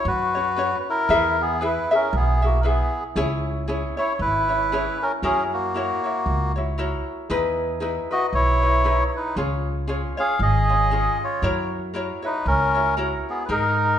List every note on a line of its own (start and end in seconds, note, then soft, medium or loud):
0.00 0.36 C#4 soft
0.00 0.35 F#4 soft
0.00 0.34 C#5 medium
0.05 0.73 F#2 medium
0.05 0.76 F#4 medium
0.05 0.78 B4 medium
0.35 0.56 C#4 soft
0.35 0.57 F#4 soft
0.35 0.57 C#5 soft
0.56 1.09 C#4 medium
0.56 1.09 F#4 medium
0.56 1.08 B4 medium
0.56 1.10 C#5 medium
0.80 0.87 B4 medium
0.89 1.36 E4 medium
0.89 1.42 A#4 loud
1.09 1.76 E2 medium
1.09 1.61 E4 medium
1.09 1.62 G#4 medium
1.09 1.60 B4 medium
1.09 1.62 E5 medium
1.41 1.60 B3 medium
1.41 1.63 G#4 medium
1.61 1.91 E4 medium
1.61 1.90 E4 medium
1.61 1.91 G#4 medium
1.61 1.90 B4 medium
1.61 1.90 E5 medium
1.65 1.94 B4 medium
1.91 2.13 C#4 medium
1.91 2.44 E4 soft
1.91 2.43 G#4 soft
1.91 2.16 A#4 medium
1.91 2.42 E5 medium
2.13 2.80 B1 medium
2.13 2.42 B3 medium
2.17 2.45 G#4 medium
2.42 2.59 A#3 medium
2.42 2.63 E4 soft
2.42 2.60 F#4 medium
2.42 2.64 G#4 soft
2.42 2.63 E5 soft
2.61 3.17 E4 medium
2.61 2.66 A#4 soft
2.61 3.16 B4 medium
2.65 3.03 B3 medium
2.65 3.16 G#4 medium
2.65 3.04 G#4 medium
2.65 3.17 E5 medium
3.16 3.83 C#2 medium
3.16 3.68 C#4 medium
3.16 3.69 E4 medium
3.16 3.66 G#4 medium
3.16 3.69 C#5 medium
3.68 3.98 C#4 medium
3.68 3.97 E4 medium
3.68 3.97 G#4 medium
3.68 3.96 C#5 medium
3.97 4.50 C#4 soft
3.97 4.50 E4 soft
3.97 4.13 E4 medium
3.97 4.49 C#5 soft
3.97 4.13 C#5 medium
4.15 4.20 C#5 medium
4.19 4.87 G#1 medium
4.19 4.98 E4 medium
4.19 5.04 B4 loud
4.49 4.72 C#4 soft
4.49 4.72 E4 soft
4.49 4.71 C#5 soft
4.72 5.23 C#4 medium
4.72 5.23 E4 medium
4.72 5.23 G#4 medium
4.72 5.24 C#5 medium
5.02 5.12 C#4 medium
5.02 5.12 A#4 medium
5.22 5.90 F#2 medium
5.22 5.44 C#4 medium
5.22 5.75 E4 medium
5.22 5.74 F#4 medium
5.22 5.43 G#4 medium
5.22 5.73 A#4 medium
5.22 5.76 C#5 medium
5.45 5.53 G#4 medium
5.53 6.52 A#3 medium
5.53 6.52 F#4 medium
5.74 6.05 E4 medium
5.74 6.04 F#4 medium
5.74 6.03 A#4 medium
5.74 6.03 C#5 medium
6.04 6.57 E4 soft
6.04 6.56 F#4 soft
6.04 6.55 C#5 soft
6.26 6.93 C#2 medium
6.56 6.77 E4 soft
6.56 6.78 F#4 soft
6.56 6.77 C#5 medium
6.78 7.30 E4 medium
6.78 7.30 F#4 medium
6.78 7.29 A#4 medium
6.78 7.31 C#5 medium
7.30 7.97 E2 medium
7.30 7.80 D#4 medium
7.30 7.81 E4 medium
7.30 7.80 G#4 medium
7.30 7.81 B4 medium
7.80 8.11 D#4 medium
7.80 8.11 E4 medium
7.80 8.10 G#4 medium
7.80 8.10 B4 medium
8.11 8.63 D#4 soft
8.11 8.62 E4 soft
8.11 8.27 F#4 medium
8.11 8.61 B4 soft
8.11 8.27 D#5 loud
8.28 8.34 D#5 medium
8.33 9.00 B1 medium
8.33 9.04 E4 medium
8.33 9.04 C#5 loud
8.62 8.83 D#4 soft
8.62 8.84 E4 soft
8.62 8.85 B4 soft
8.84 9.36 D#4 medium
8.84 9.37 E4 medium
8.84 9.36 G#4 medium
8.84 9.37 B4 medium
9.08 9.15 C#5 soft
9.16 9.36 D#4 medium
9.16 9.36 B4 medium
9.36 10.04 C#2 medium
9.36 9.87 C#4 medium
9.36 9.88 F4 medium
9.36 9.86 G#4 medium
9.36 9.89 C#5 medium
9.88 10.17 C#4 medium
9.88 10.17 F4 medium
9.88 10.17 G#4 medium
9.88 10.16 C#5 medium
10.17 10.71 C#4 soft
10.17 10.69 F4 soft
10.17 10.39 G#4 medium
10.17 10.69 C#5 soft
10.17 10.41 F5 medium
10.39 11.07 G#1 medium
10.39 11.18 G#4 medium
10.39 11.24 D#5 loud
10.69 10.90 C#4 soft
10.69 10.91 F4 soft
10.69 10.91 C#5 soft
10.91 11.43 C#4 medium
10.91 11.43 F4 medium
10.91 11.42 G#4 medium
10.91 11.44 C#5 medium
11.24 11.43 F4 medium
11.24 11.43 C#5 medium
11.42 12.09 F#2 medium
11.42 11.93 E4 medium
11.42 11.94 F#4 medium
11.42 11.93 A#4 medium
11.42 11.95 C#5 medium
11.94 12.23 E4 medium
11.94 12.23 F#4 medium
11.94 12.22 A#4 medium
11.94 12.21 C#5 medium
12.22 12.75 E4 soft
12.22 12.74 F#4 soft
12.22 12.47 B4 medium
12.22 12.73 C#5 soft
12.27 12.46 D#4 medium
12.46 13.13 C#2 medium
12.46 12.95 C#4 medium
12.46 12.95 A#4 loud
12.75 12.97 E4 soft
12.75 12.97 F#4 soft
12.75 12.97 C#5 soft
12.97 13.49 E4 medium
12.97 13.49 F#4 medium
12.97 13.48 A#4 medium
12.97 13.50 C#5 medium
13.30 13.43 B3 medium
13.30 13.45 G#4 medium
13.45 13.99 G#2 medium
13.45 13.99 A#4 medium
13.45 13.50 B4 medium
13.49 13.99 D#4 medium
13.49 13.99 G#4 medium
13.49 13.99 A#4 loud